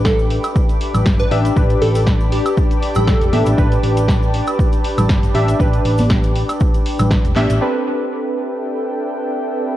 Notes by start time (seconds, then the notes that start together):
Already playing: A1 D4 G4 A4 B4 D5 E5 G5 A5 B5 D6
0.05 A4, kick, snare, cabasa
0.19 cabasa
0.30 open hi-hat
0.44 closed hi-hat, cabasa, high woodblock
0.56 kick, cabasa
0.69 closed hi-hat, cabasa
0.81 open hi-hat
0.94 A1, closed hi-hat, low conga, cabasa, high woodblock
1.06 kick, snare, cabasa
1.19 B4, closed hi-hat, cabasa
1.31 A1 D4 G4 E5, open hi-hat
1.45 closed hi-hat, cabasa
1.56 A1 D4 G4 B4, kick, cabasa
1.70 closed hi-hat, cabasa
1.82 A1 A4, open hi-hat
1.95 open hi-hat, cabasa
2.07 kick, snare, cabasa
2.20 cabasa
2.32 G4, open hi-hat
2.46 closed hi-hat, cabasa, high woodblock
2.57 kick, cabasa
2.71 closed hi-hat, cabasa
2.83 open hi-hat
2.95 A1 A4, closed hi-hat, low conga, cabasa, high woodblock
3.08 kick, snare, cabasa
3.21 E1, closed hi-hat, cabasa
3.33 A1 D4 G4 E5, open hi-hat, high conga
3.46 A1, closed hi-hat, cabasa
3.58 A1 D4 G4 B4, kick, cabasa
3.72 closed hi-hat, cabasa
3.83 A1, open hi-hat
3.97 closed hi-hat, cabasa
4.08 kick, snare, cabasa
4.23 cabasa
4.34 open hi-hat
4.47 closed hi-hat, cabasa, high woodblock
4.59 kick, cabasa
4.72 closed hi-hat, cabasa
4.84 open hi-hat
4.98 A1, closed hi-hat, low conga, cabasa, high woodblock
5.09 kick, snare, cabasa
5.23 closed hi-hat, cabasa
5.34 A1 D4 G4 E5, open hi-hat
5.48 closed hi-hat, cabasa
5.59 A1 D4 G4 B4, kick, cabasa
5.73 closed hi-hat, cabasa
5.85 A1, open hi-hat
5.98 open hi-hat, high conga, cabasa
6.10 kick, snare, cabasa
6.23 closed hi-hat, cabasa
6.36 open hi-hat
6.49 closed hi-hat, cabasa, high woodblock
6.60 kick, cabasa
6.74 closed hi-hat, cabasa
6.86 open hi-hat
6.99 A1, closed hi-hat, low conga, cabasa, high woodblock
7.11 kick, snare, cabasa
7.25 E1, closed hi-hat, cabasa
7.36 A1 D4 G4 E5, clap, open hi-hat, high conga
7.50 A1, closed hi-hat, cabasa
7.61 C4 D4 G4 A4 B4 D5 G5, crash
7.98 E5